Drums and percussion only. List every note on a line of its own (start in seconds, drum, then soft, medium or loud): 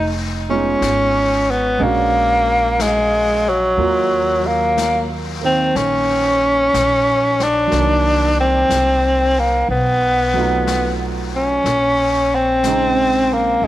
0.82 brush sweep soft
0.82 snare soft
0.82 hi-hat pedal soft
1.81 brush sweep soft
2.80 brush sweep soft
2.80 snare soft
2.80 hi-hat pedal soft
3.78 brush sweep soft
4.77 brush sweep soft
4.77 snare soft
4.77 hi-hat pedal soft
5.76 brush sweep soft
5.76 snare soft
6.74 brush sweep soft
6.74 snare soft
6.74 hi-hat pedal soft
7.40 snare soft
7.72 brush sweep soft
7.72 snare soft
8.70 brush sweep soft
8.70 snare soft
8.70 hi-hat pedal medium
9.69 brush sweep soft
10.67 brush sweep soft
10.67 snare soft
10.67 hi-hat pedal soft
11.66 brush sweep soft
11.66 snare soft
12.64 brush sweep soft
12.64 snare soft
12.64 hi-hat pedal soft
13.62 brush sweep soft